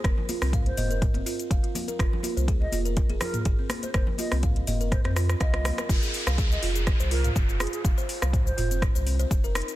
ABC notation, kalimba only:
X:1
M:4/4
L:1/16
Q:"Swing 16ths" 1/4=123
K:Fm
V:1 name="Kalimba"
B z F C f z e B z C F z f F z B | F z F c A z F B z A F z A C z c | B z F C f z e B z C F z f F z B | F A z f A z F A z c F f z F F z |
f c z f c z F C z c C c z B E z |]